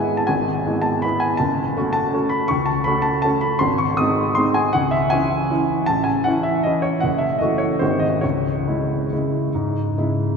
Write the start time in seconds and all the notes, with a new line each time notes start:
Already playing: G#3 B3 E4 G#5
0.17 A5
0.27 G#1 G#5
0.66 G#3 B3 E4
0.82 A5
1.02 G#3 B3 E4 B5
1.20 G#5
1.37 F#1 A5
1.77 A3 C#4 F#4
1.93 A5
2.14 A3 C#4 F#4
2.29 B5
2.48 C#2 C#6
2.66 A5
2.84 A3 C#4 F#4 B5
3.02 A5
3.22 A3 C#4 F#4 A5
3.41 B5
3.59 G#1 C6
3.78 C#6
3.97 G#3 C4 D#4 D#6
4.35 G#3 C4 D#4 C6
4.54 G#5
4.73 C#2 F#5
4.91 E5
5.10 E3 C#4 E4 G#5
5.51 E3 C#4 E4
5.86 A1 A5
6.04 G#5
6.24 E3 C#4 E4 F#5
6.43 E5
6.63 E3 C#4 E4 D#5
6.82 C#5
7.00 F#1 F#5
7.18 E5
7.38 E3 A3 F#4 D#5
7.58 C#5
7.79 G#1 D#3 G#3 F#4 C5
7.99 D#5
8.21 C#2 C#5
8.67 C#3 G#3 E4
9.13 C#3 G#3 E4
9.55 G#2
9.98 C#3 G#3 E4